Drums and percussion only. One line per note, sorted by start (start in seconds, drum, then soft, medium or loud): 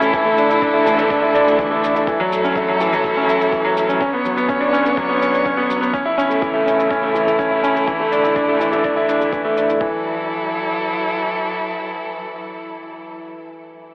0.02 shaker soft
0.14 kick loud
0.14 shaker soft
0.38 shaker medium
0.50 shaker soft
0.62 kick medium
0.62 shaker soft
0.87 shaker medium
0.99 shaker soft
1.10 kick medium
1.10 shaker soft
1.35 shaker medium
1.48 shaker soft
1.59 kick medium
1.59 shaker soft
1.84 shaker medium
1.96 shaker soft
2.07 kick loud
2.07 shaker soft
2.33 shaker medium
2.45 shaker soft
2.56 kick medium
2.56 shaker soft
2.81 shaker medium
2.93 shaker soft
3.04 kick medium
3.04 shaker soft
3.29 shaker medium
3.41 shaker soft
3.52 kick medium
3.52 shaker soft
3.77 shaker medium
3.90 shaker soft
4.01 kick medium
4.01 shaker soft
4.25 shaker medium
4.38 shaker soft
4.49 kick medium
4.49 shaker soft
4.74 shaker medium
4.86 shaker soft
4.97 kick medium
4.97 shaker soft
5.22 shaker medium
5.34 shaker soft
5.46 kick medium
5.46 shaker soft
5.70 shaker medium
5.83 shaker soft
5.94 kick medium
5.94 shaker soft
6.19 shaker medium
6.31 shaker soft
6.42 kick medium
6.42 shaker soft
6.68 shaker medium
6.80 shaker soft
6.91 kick medium
6.91 shaker soft
7.16 shaker medium
7.28 shaker soft
7.39 kick medium
7.39 shaker soft
7.64 shaker medium
7.76 shaker soft
7.88 kick medium
7.88 shaker soft
8.12 shaker medium
8.24 shaker soft
8.36 kick medium
8.36 shaker soft
8.61 shaker medium
8.73 shaker soft
8.84 kick medium
8.84 shaker soft
9.09 shaker medium
9.21 shaker soft
9.33 kick medium
9.33 shaker soft
9.57 shaker medium
9.70 shaker soft
9.81 kick medium